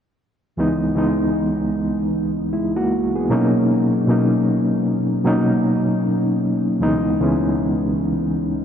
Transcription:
0.57 0.87 C#2 medium
0.57 0.88 E3 medium
0.57 0.88 G#3 medium
0.57 0.88 B3 medium
0.57 0.89 D#4 medium
0.95 1.79 C#2 medium
0.95 1.80 E3 medium
0.95 1.80 G#3 medium
0.95 1.80 B3 medium
0.95 1.81 D#4 medium
2.53 2.75 G#3 soft
2.53 2.75 E4 medium
2.76 3.13 A#3 medium
2.76 3.13 F#4 medium
3.15 3.53 B3 soft
3.15 3.52 G#4 medium
3.29 3.95 B2 medium
3.29 3.96 F#3 medium
3.29 3.96 A#3 medium
3.29 3.96 C#4 medium
3.29 3.97 D#4 medium
4.07 4.91 B2 medium
4.07 4.92 F#3 medium
4.07 4.92 A#3 medium
4.07 4.92 C#4 medium
4.07 4.93 D#4 medium
5.24 6.36 B2 medium
5.24 6.36 F#3 medium
5.24 6.37 A#3 medium
5.24 6.37 C#4 medium
5.24 6.37 D#4 medium
6.80 7.10 C#2 medium
6.80 7.11 E3 medium
6.80 7.11 G#3 medium
6.80 7.11 B3 medium
6.80 7.12 D#4 medium
7.20 8.03 C#2 medium
7.20 8.04 E3 medium
7.20 8.04 G#3 medium
7.20 8.05 B3 medium
7.20 8.05 C#4 medium

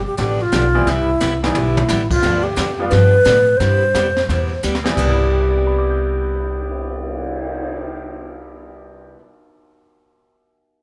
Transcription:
0.07 0.18 G4 medium
0.17 0.48 A1 medium
0.17 0.39 D3 medium
0.17 0.40 F3 medium
0.17 0.40 B3 medium
0.17 0.40 D4 medium
0.17 0.40 G4 medium
0.17 0.43 G4 loud
0.17 brush sweep soft
0.17 kick soft
0.17 snare soft
0.42 0.90 F4 medium
0.52 0.82 B1 medium
0.52 0.64 D3 medium
0.52 0.64 F3 medium
0.52 0.64 B3 medium
0.52 0.64 D4 medium
0.52 0.64 G4 medium
0.52 kick soft
0.52 snare medium
0.52 hi-hat pedal medium
0.74 0.86 E3 medium
0.74 0.86 G3 medium
0.74 0.86 B3 medium
0.74 0.86 C4 medium
0.74 0.86 E4 medium
0.87 1.14 C2 medium
0.87 1.09 C3 medium
0.87 1.09 G3 medium
0.87 1.09 B3 medium
0.87 1.09 E4 medium
0.87 1.44 E4 loud
0.87 1.09 G4 medium
0.87 brush sweep medium
0.87 kick soft
0.87 snare soft
1.20 1.51 C2 medium
1.20 1.32 C3 medium
1.20 1.32 G3 medium
1.20 1.32 B3 medium
1.20 1.32 E4 medium
1.20 1.33 G4 medium
1.20 snare medium
1.20 hi-hat pedal medium
1.43 1.54 E3 medium
1.43 1.54 G3 medium
1.43 1.54 B3 medium
1.43 1.54 C4 medium
1.43 1.55 E4 medium
1.43 2.08 E4 medium
1.43 snare medium
1.55 1.85 B1 medium
1.55 1.77 C3 medium
1.55 1.77 G3 medium
1.55 1.77 B3 medium
1.55 1.77 E4 medium
1.55 1.77 G4 medium
1.55 mid tom medium
1.77 mid tom loud
1.89 2.19 A1 medium
1.89 2.01 C3 medium
1.89 2.01 G3 medium
1.89 2.01 B3 medium
1.89 2.01 E4 medium
1.89 2.01 G4 medium
1.89 snare medium
1.89 hi-hat pedal medium
2.11 2.45 F4 medium
2.11 kick medium
2.11 crash medium
2.23 2.57 D2 medium
2.23 2.45 D3 medium
2.23 2.45 F3 medium
2.23 2.45 B3 medium
2.23 2.45 D4 medium
2.23 2.45 G4 medium
2.23 brush sweep medium
2.23 kick soft
2.23 snare soft
2.43 2.88 G4 loud
2.56 2.91 F2 medium
2.56 2.69 D3 medium
2.56 2.69 F3 medium
2.56 2.69 B3 medium
2.56 2.69 D4 medium
2.56 2.69 G4 medium
2.56 kick soft
2.56 snare medium
2.56 hi-hat pedal medium
2.79 2.91 F3 medium
2.79 2.91 G3 medium
2.79 2.91 B3 medium
2.79 2.91 D4 medium
2.79 2.91 F4 medium
2.88 3.25 G2 medium
2.88 3.13 D3 medium
2.88 3.13 F3 medium
2.88 3.13 B3 medium
2.88 3.13 D4 medium
2.88 3.13 G4 medium
2.88 3.59 B4 loud
2.88 brush sweep soft
2.88 kick soft
2.88 snare soft
3.25 3.59 A2 medium
3.25 3.37 D3 medium
3.25 3.37 F3 medium
3.25 3.37 B3 medium
3.25 3.37 D4 medium
3.25 3.37 G4 medium
3.25 kick soft
3.25 snare medium
3.25 hi-hat pedal medium
3.57 3.94 G2 medium
3.57 3.82 C3 medium
3.57 3.82 G3 medium
3.57 3.82 B3 medium
3.57 3.82 E4 medium
3.57 3.82 G4 medium
3.57 4.62 C5 loud
3.57 brush sweep soft
3.57 kick soft
3.57 snare soft
3.94 4.28 F2 medium
3.94 4.07 C3 medium
3.94 4.07 G3 medium
3.94 4.07 B3 medium
3.94 4.07 E4 medium
3.94 4.07 G4 medium
3.94 kick soft
3.94 snare medium
3.94 hi-hat pedal medium
4.17 snare soft
4.29 4.62 E2 medium
4.29 4.51 C3 medium
4.29 4.51 G3 medium
4.29 4.51 B3 medium
4.29 4.51 E4 medium
4.29 4.51 G4 medium
4.29 brush sweep soft
4.29 kick soft
4.29 snare soft
4.63 4.96 D2 medium
4.63 4.75 C3 medium
4.63 4.75 G3 medium
4.63 4.75 B3 medium
4.63 4.75 E4 medium
4.63 4.75 G4 medium
4.63 hi-hat pedal medium
4.75 snare medium
4.84 9.06 C3 medium
4.84 4.97 E3 medium
4.84 4.90 G3 medium
4.84 4.96 B3 medium
4.84 4.97 C4 medium
4.84 4.97 E4 medium
4.84 snare medium
4.91 9.12 G3 medium
4.97 9.14 C2 medium
4.97 9.18 C3 medium
4.97 9.19 G3 medium
4.97 9.18 B3 medium
4.97 9.20 B3 medium
4.97 9.20 E4 medium
4.97 9.20 G4 medium
4.97 kick medium
4.97 crash medium
5.04 9.25 D4 medium
5.10 9.28 E4 medium
5.19 cymbal swell soft
5.33 9.18 G4 soft
5.40 9.22 B4 soft
5.48 9.26 D5 soft
5.57 9.31 G5 soft
5.67 9.35 B5 soft
5.78 9.41 D6 soft
5.90 9.47 G6 soft

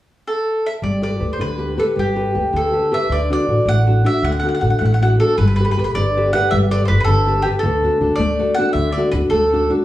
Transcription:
0.28 0.66 A4 medium
0.66 0.71 E5 medium
0.82 1.08 G1 medium
0.82 1.20 G3 soft
0.82 1.02 D5 medium
1.02 1.18 G4 soft
1.02 1.19 A4 soft
1.02 1.19 B4 soft
1.02 1.32 D5 medium
1.19 1.33 D2 medium
1.19 1.52 G4 soft
1.19 1.52 A4 soft
1.19 1.52 B4 soft
1.33 1.40 C5 soft
1.39 1.77 D2 medium
1.39 1.77 D3 soft
1.39 1.77 B4 medium
1.58 1.76 G4 soft
1.58 1.77 A4 soft
1.58 1.77 B4 soft
1.77 2.09 G4 soft
1.77 2.09 A4 soft
1.77 1.85 A4 medium
1.77 2.09 B4 soft
1.96 2.22 G1 medium
1.96 2.34 G3 soft
1.96 2.56 G4 medium
2.15 2.33 G4 soft
2.15 2.34 A4 soft
2.15 2.34 B4 soft
2.34 2.47 D2 medium
2.34 2.65 G4 soft
2.34 2.66 A4 soft
2.34 2.66 B4 soft
2.53 2.90 D2 medium
2.53 2.90 D3 soft
2.53 2.94 A4 medium
2.72 2.90 G4 soft
2.72 2.91 A4 soft
2.72 2.92 B4 soft
2.92 3.06 G4 soft
2.92 3.06 A4 soft
2.92 3.07 B4 medium
2.92 3.11 E5 medium
3.09 3.34 D2 medium
3.09 3.46 D3 medium
3.09 3.32 D5 medium
3.30 3.47 D4 soft
3.30 3.47 F#4 soft
3.30 3.48 A4 soft
3.30 3.68 D5 medium
3.47 3.59 A1 medium
3.47 3.79 D4 soft
3.47 3.79 F#4 soft
3.47 3.79 A4 soft
3.65 4.02 A1 medium
3.65 4.04 A3 soft
3.65 4.03 F#5 medium
3.86 4.03 D4 soft
3.86 4.03 F#4 soft
3.86 4.04 A4 soft
4.04 4.35 D4 medium
4.04 4.35 F#4 soft
4.04 4.36 A4 soft
4.04 4.22 E5 medium
4.22 4.48 D2 medium
4.22 4.60 D3 soft
4.22 4.31 F#5 medium
4.32 4.38 F#5 soft
4.40 4.61 D4 soft
4.40 4.46 F#5 soft
4.44 4.61 F#4 soft
4.44 4.61 A4 soft
4.49 4.53 F#5 soft
4.55 4.60 F#5 medium
4.61 4.74 A1 medium
4.61 4.93 D4 soft
4.61 4.93 F#4 soft
4.61 4.93 A4 soft
4.61 4.68 F#5 medium
4.70 4.76 F#5 soft
4.79 5.18 A1 medium
4.79 5.19 A3 medium
4.79 4.84 F#5 soft
4.85 4.92 F#5 soft
4.94 5.01 F#5 medium
5.02 5.18 D4 soft
5.02 5.19 F#4 soft
5.02 5.19 A4 soft
5.02 5.08 F#5 medium
5.19 5.34 D4 medium
5.19 5.34 F#4 soft
5.19 5.37 A4 medium
5.19 5.35 A4 soft
5.38 5.64 G1 medium
5.38 5.77 G3 medium
5.38 5.45 B4 medium
5.48 5.55 B4 medium
5.56 5.76 G4 soft
5.56 5.77 A4 soft
5.56 5.62 B4 medium
5.60 5.77 B4 soft
5.65 5.70 B4 medium
5.71 5.77 B4 medium
5.77 5.90 G1 medium
5.77 6.08 G4 soft
5.77 6.09 A4 soft
5.77 6.09 B4 soft
5.77 5.83 B4 soft
5.84 5.91 B4 medium
5.95 6.32 G1 medium
5.95 6.34 D3 medium
5.95 6.31 D5 medium
6.17 6.33 G4 soft
6.17 6.34 A4 soft
6.17 6.33 B4 soft
6.33 6.64 G4 soft
6.33 6.65 A4 soft
6.33 6.65 B4 medium
6.33 6.50 F#5 medium
6.51 6.77 G1 medium
6.51 6.89 G3 medium
6.51 6.56 E5 medium
6.71 6.89 G4 soft
6.71 6.89 A4 soft
6.71 6.89 B4 medium
6.71 6.84 D5 medium
6.85 6.99 B4 medium
6.85 6.90 C5 medium
6.90 7.02 G1 medium
6.90 7.20 G4 soft
6.90 7.21 A4 soft
6.90 7.21 B4 soft
7.00 7.04 B4 medium
7.04 7.44 G1 medium
7.04 7.45 D3 medium
7.04 7.45 A4 medium
7.27 7.44 G4 soft
7.27 7.44 A4 soft
7.27 7.44 B4 soft
7.42 7.48 G4 medium
7.42 7.60 G4 medium
7.42 7.60 A4 soft
7.42 7.60 B4 medium
7.59 7.88 D2 medium
7.59 8.00 D3 medium
7.59 8.19 A4 medium
7.83 8.00 D4 soft
7.83 8.00 F#4 soft
7.83 8.00 A4 soft
8.01 8.13 D2 medium
8.01 8.31 D4 soft
8.01 8.32 F#4 soft
8.01 8.32 A4 soft
8.16 8.55 D2 medium
8.16 8.56 A3 medium
8.16 8.53 D5 medium
8.39 8.57 D4 soft
8.39 8.58 F#4 soft
8.39 8.58 A4 soft
8.54 8.88 D4 soft
8.54 8.73 F#5 medium
8.59 8.89 F#4 soft
8.59 8.89 A4 medium
8.73 9.00 D2 medium
8.73 9.13 D3 soft
8.73 8.93 E5 medium
8.93 9.11 D5 medium
8.97 9.13 D4 soft
8.97 9.14 F#4 soft
8.97 9.14 A4 soft
9.12 9.25 D2 medium
9.12 9.45 D4 soft
9.12 9.45 F#4 soft
9.12 9.45 A4 soft
9.12 9.17 B4 medium
9.30 9.69 D2 medium
9.30 9.70 A3 soft
9.30 9.71 A4 medium
9.53 9.69 D4 soft
9.53 9.69 F#4 soft
9.53 9.69 A4 soft
9.70 9.85 D4 soft
9.70 9.85 F#4 soft
9.70 9.85 A4 medium

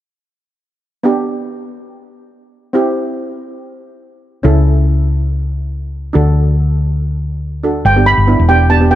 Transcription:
1.03 2.71 B3 medium
1.03 2.71 D4 medium
1.03 2.72 G4 medium
2.73 4.41 C4 medium
2.73 4.41 E4 medium
2.73 4.42 G4 medium
4.43 6.11 C#2 medium
4.43 6.11 C#4 medium
4.43 6.11 E4 medium
4.43 6.12 A4 medium
6.13 7.82 D2 medium
6.13 7.60 D4 medium
6.13 7.61 F#4 medium
6.13 7.61 A4 medium
7.63 7.85 D4 soft
7.63 7.85 F#4 soft
7.63 7.85 A4 medium
7.85 8.14 G1 medium
7.85 8.07 G5 medium
7.96 8.15 B3 medium
7.96 8.15 D4 medium
7.96 8.16 G4 medium
8.06 8.50 B5 medium
8.18 8.36 G1 medium
8.27 8.41 B3 medium
8.27 8.41 D4 medium
8.27 8.41 E4 medium
8.39 8.95 E1 medium
8.49 8.62 B3 medium
8.49 8.62 D4 medium
8.49 8.62 G4 medium
8.49 8.71 G5 medium
8.70 8.77 B3 medium
8.70 8.77 D4 medium
8.70 8.77 G4 medium
8.70 8.92 A5 medium
8.80 8.87 B3 medium
8.80 8.87 D4 medium
8.80 8.87 G4 medium
8.91 8.95 B3 medium
8.91 8.95 D4 medium
8.91 8.95 G4 medium
8.91 8.95 G5 medium

